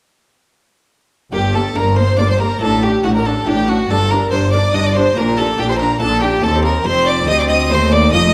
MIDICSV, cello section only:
0, 0, Header, 1, 2, 480
1, 0, Start_track
1, 0, Key_signature, -2, "minor"
1, 0, Tempo, 425834
1, 1500, Time_signature, 3, 2, 24, 8
1, 9397, End_track
2, 0, Start_track
2, 0, Title_t, "Cello section"
2, 0, Program_c, 0, 48
2, 1507, Note_on_c, 0, 43, 83
2, 1931, Note_off_c, 0, 43, 0
2, 1986, Note_on_c, 0, 43, 87
2, 2413, Note_off_c, 0, 43, 0
2, 2475, Note_on_c, 0, 43, 83
2, 2896, Note_off_c, 0, 43, 0
2, 2954, Note_on_c, 0, 45, 94
2, 3375, Note_off_c, 0, 45, 0
2, 3432, Note_on_c, 0, 45, 80
2, 3853, Note_off_c, 0, 45, 0
2, 3905, Note_on_c, 0, 45, 89
2, 4330, Note_off_c, 0, 45, 0
2, 4391, Note_on_c, 0, 43, 94
2, 4812, Note_off_c, 0, 43, 0
2, 4866, Note_on_c, 0, 43, 82
2, 5292, Note_off_c, 0, 43, 0
2, 5356, Note_on_c, 0, 43, 89
2, 5775, Note_off_c, 0, 43, 0
2, 5834, Note_on_c, 0, 46, 94
2, 6249, Note_off_c, 0, 46, 0
2, 6309, Note_on_c, 0, 46, 83
2, 6722, Note_off_c, 0, 46, 0
2, 6778, Note_on_c, 0, 46, 99
2, 7197, Note_off_c, 0, 46, 0
2, 7253, Note_on_c, 0, 39, 94
2, 7697, Note_off_c, 0, 39, 0
2, 7735, Note_on_c, 0, 41, 90
2, 8204, Note_off_c, 0, 41, 0
2, 8214, Note_on_c, 0, 38, 86
2, 8694, Note_off_c, 0, 38, 0
2, 8702, Note_on_c, 0, 39, 97
2, 9172, Note_on_c, 0, 41, 90
2, 9176, Note_off_c, 0, 39, 0
2, 9397, Note_off_c, 0, 41, 0
2, 9397, End_track
0, 0, End_of_file